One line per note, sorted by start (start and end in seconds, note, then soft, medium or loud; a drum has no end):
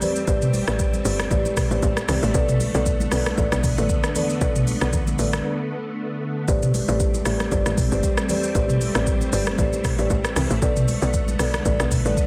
0.00 2.31 G3 medium
0.00 6.44 A3 medium
0.00 2.31 C4 medium
0.00 0.13 G4 medium
0.00 0.13 B4 medium
0.00 0.13 C5 medium
0.00 0.13 D5 medium
0.00 open hi-hat medium
0.00 high conga medium
0.00 low conga medium
0.00 shaker medium
0.16 shaker medium
0.27 0.63 A1 loud
0.27 0.64 G4 medium
0.27 0.64 B4 medium
0.27 0.64 C5 medium
0.27 0.64 D5 loud
0.27 kick loud
0.27 shaker medium
0.42 mid tom medium
0.42 shaker medium
0.53 open hi-hat soft
0.53 high conga medium
0.53 shaker medium
0.67 1.01 A1 loud
0.67 0.77 G4 medium
0.67 0.77 B4 medium
0.67 0.77 C5 medium
0.67 0.77 D5 medium
0.67 cross-stick loud
0.67 shaker medium
0.79 kick loud
0.79 shaker medium
0.93 high conga medium
0.93 shaker medium
1.05 1.28 G1 loud
1.05 1.16 G4 medium
1.05 1.16 B4 medium
1.05 1.16 C5 medium
1.05 1.16 D5 medium
1.05 open hi-hat medium
1.05 shaker loud
1.19 cross-stick loud
1.19 high conga medium
1.19 shaker soft
1.31 1.66 A1 loud
1.31 1.42 G4 medium
1.31 1.42 B4 medium
1.31 1.42 C5 medium
1.31 1.42 D5 loud
1.31 kick loud
1.31 low conga medium
1.31 shaker medium
1.45 high conga medium
1.45 shaker medium
1.57 kick loud
1.57 cross-stick loud
1.57 mid tom medium
1.57 open hi-hat medium
1.57 high conga medium
1.57 shaker loud
1.71 1.81 A1 medium
1.71 1.80 G4 medium
1.71 1.80 B4 medium
1.71 1.80 C5 medium
1.71 1.80 D5 medium
1.71 high conga medium
1.71 shaker medium
1.83 2.06 A1 loud
1.83 kick loud
1.83 shaker medium
1.97 cross-stick loud
1.97 shaker medium
2.08 2.21 C2 loud
2.08 2.19 G4 medium
2.08 2.20 B4 medium
2.08 2.20 C5 medium
2.08 2.20 D5 medium
2.08 cross-stick loud
2.08 open hi-hat medium
2.08 high conga medium
2.08 low conga medium
2.08 shaker medium
2.23 2.33 A1 loud
2.23 shaker medium
2.34 2.70 B1 loud
2.34 6.44 D3 medium
2.34 6.44 B3 loud
2.34 2.71 A4 medium
2.34 2.71 B4 medium
2.34 2.71 D5 loud
2.34 kick loud
2.34 shaker medium
2.49 mid tom medium
2.49 shaker medium
2.60 open hi-hat soft
2.60 high conga medium
2.60 shaker medium
2.74 3.08 B1 loud
2.74 2.83 A4 medium
2.74 2.84 B4 medium
2.74 2.84 D5 medium
2.74 shaker medium
2.86 kick loud
2.86 shaker medium
3.00 high conga medium
3.00 shaker medium
3.12 3.35 B1 medium
3.12 3.23 A4 medium
3.12 3.23 B4 medium
3.12 3.23 D5 medium
3.12 cross-stick loud
3.12 open hi-hat medium
3.12 shaker loud
3.26 cross-stick loud
3.26 high conga medium
3.26 shaker soft
3.38 3.50 A1 loud
3.38 3.49 A4 medium
3.38 3.49 B4 medium
3.38 3.49 D5 loud
3.38 kick loud
3.38 low conga medium
3.38 shaker medium
3.52 3.75 B1 medium
3.52 cross-stick loud
3.52 high conga medium
3.52 shaker medium
3.64 kick loud
3.64 mid tom medium
3.64 open hi-hat medium
3.64 high conga medium
3.64 shaker medium
3.78 3.88 A1 loud
3.78 3.87 A4 medium
3.78 3.87 B4 medium
3.78 3.87 D5 medium
3.78 high conga medium
3.78 shaker medium
3.89 kick loud
3.89 shaker medium
4.04 cross-stick medium
4.04 shaker medium
4.15 4.26 A4 medium
4.15 4.26 B4 medium
4.15 4.27 D5 medium
4.15 open hi-hat medium
4.15 high conga medium
4.15 low conga medium
4.15 shaker medium
4.30 shaker medium
4.41 4.77 B1 loud
4.41 4.78 A4 loud
4.41 4.78 B4 medium
4.41 4.78 D5 loud
4.41 kick loud
4.41 shaker medium
4.56 mid tom medium
4.56 shaker medium
4.67 open hi-hat soft
4.67 high conga medium
4.67 shaker medium
4.81 5.15 B1 loud
4.81 4.90 A4 medium
4.81 4.90 B4 medium
4.81 4.91 D5 medium
4.81 cross-stick loud
4.81 shaker medium
4.93 kick loud
4.93 low conga medium
4.93 shaker medium
5.07 high conga medium
5.07 shaker medium
5.19 5.42 A1 loud
5.19 5.30 A4 medium
5.19 5.30 B4 medium
5.19 5.30 D5 medium
5.19 open hi-hat medium
5.19 shaker loud
5.33 cross-stick loud
5.33 high conga medium
5.33 shaker soft
6.48 6.84 A1 loud
6.48 10.58 G3 medium
6.48 12.27 A3 medium
6.48 10.58 C4 medium
6.48 6.85 G4 medium
6.48 6.85 B4 medium
6.48 6.85 C5 medium
6.48 6.85 D5 loud
6.48 kick loud
6.48 shaker medium
6.63 mid tom medium
6.63 shaker medium
6.74 open hi-hat soft
6.74 high conga medium
6.74 shaker medium
6.88 7.22 A1 loud
6.88 6.97 G4 medium
6.88 6.97 B4 medium
6.88 6.97 C5 medium
6.88 6.97 D5 medium
6.88 shaker medium
7.00 kick loud
7.00 shaker medium
7.14 high conga medium
7.14 shaker medium
7.25 7.49 A1 loud
7.25 7.37 G4 medium
7.25 7.37 B4 medium
7.25 7.37 C5 medium
7.25 7.37 D5 medium
7.25 cross-stick loud
7.25 open hi-hat medium
7.25 shaker loud
7.40 cross-stick loud
7.40 high conga medium
7.40 shaker soft
7.51 7.64 G1 loud
7.51 7.63 G4 medium
7.51 7.63 B4 medium
7.51 7.63 C5 medium
7.51 7.63 D5 loud
7.51 kick loud
7.51 low conga medium
7.51 shaker medium
7.66 7.89 A1 medium
7.66 cross-stick medium
7.66 high conga medium
7.66 shaker medium
7.78 kick loud
7.78 mid tom medium
7.78 open hi-hat medium
7.78 high conga medium
7.78 shaker medium
7.91 8.02 G1 medium
7.91 8.01 G4 medium
7.91 8.01 B4 medium
7.91 8.01 C5 medium
7.91 8.01 D5 medium
7.91 high conga medium
7.91 shaker medium
8.03 kick medium
8.03 shaker medium
8.17 cross-stick loud
8.17 shaker medium
8.29 8.40 G4 medium
8.29 8.40 B4 medium
8.29 8.40 C5 medium
8.29 8.40 D5 medium
8.29 open hi-hat medium
8.29 high conga medium
8.29 low conga medium
8.29 shaker medium
8.43 shaker medium
8.55 8.91 A1 loud
8.55 8.92 G4 medium
8.55 8.92 B4 medium
8.55 8.92 C5 medium
8.55 8.92 D5 loud
8.55 kick loud
8.55 shaker medium
8.69 mid tom medium
8.69 shaker medium
8.81 open hi-hat soft
8.81 high conga medium
8.81 shaker medium
8.95 9.28 A1 loud
8.95 9.04 G4 medium
8.95 9.04 B4 medium
8.95 9.04 C5 medium
8.95 9.04 D5 medium
8.95 cross-stick loud
8.95 shaker medium
9.07 kick loud
9.07 shaker medium
9.21 high conga medium
9.21 shaker medium
9.32 9.56 G1 medium
9.32 9.44 G4 medium
9.32 9.44 B4 medium
9.32 9.44 C5 medium
9.32 9.44 D5 medium
9.32 open hi-hat medium
9.32 shaker loud
9.47 cross-stick loud
9.47 high conga medium
9.47 shaker soft
9.58 9.94 A1 loud
9.58 9.69 G4 medium
9.58 9.69 B4 medium
9.58 9.70 C5 medium
9.58 9.70 D5 loud
9.58 kick loud
9.58 low conga medium
9.58 shaker medium
9.73 high conga medium
9.73 shaker medium
9.84 kick loud
9.84 cross-stick loud
9.84 mid tom medium
9.84 open hi-hat medium
9.84 high conga medium
9.84 shaker loud
9.98 10.09 A1 medium
9.98 10.07 G4 medium
9.98 10.08 B4 medium
9.98 10.08 C5 medium
9.98 10.08 D5 medium
9.98 high conga medium
9.98 shaker medium
10.10 10.33 A1 loud
10.10 kick loud
10.10 shaker medium
10.25 cross-stick loud
10.25 shaker medium
10.36 10.49 C2 loud
10.36 cross-stick loud
10.36 open hi-hat medium
10.36 high conga medium
10.36 low conga medium
10.36 shaker medium
10.50 10.61 A1 loud
10.50 shaker medium
10.62 10.98 B1 loud
10.62 12.27 D3 medium
10.62 12.27 B3 medium
10.62 10.98 A4 loud
10.62 10.99 B4 medium
10.62 10.99 D5 loud
10.62 kick loud
10.62 shaker medium
10.76 mid tom medium
10.76 shaker medium
10.88 open hi-hat soft
10.88 high conga medium
10.88 shaker medium
11.02 11.35 B1 loud
11.02 11.11 A4 medium
11.02 11.11 B4 medium
11.02 11.11 D5 medium
11.02 shaker medium
11.14 kick loud
11.14 shaker medium
11.28 high conga medium
11.28 shaker medium
11.39 11.62 B1 medium
11.39 11.50 A4 medium
11.39 11.51 B4 medium
11.39 11.51 D5 medium
11.39 cross-stick loud
11.39 open hi-hat medium
11.39 shaker loud
11.54 cross-stick loud
11.54 high conga medium
11.54 shaker soft
11.65 11.78 A1 loud
11.65 11.76 A4 medium
11.65 11.76 B4 medium
11.65 11.77 D5 loud
11.65 kick loud
11.65 low conga medium
11.65 shaker medium
11.80 12.03 B1 medium
11.80 cross-stick loud
11.80 high conga medium
11.80 shaker medium
11.91 kick loud
11.91 mid tom medium
11.91 open hi-hat medium
11.91 high conga medium
11.91 shaker loud
12.05 12.16 A1 loud
12.05 12.14 A4 medium
12.05 12.15 B4 medium
12.05 12.15 D5 medium
12.05 high conga medium
12.05 shaker medium
12.17 kick loud
12.17 shaker medium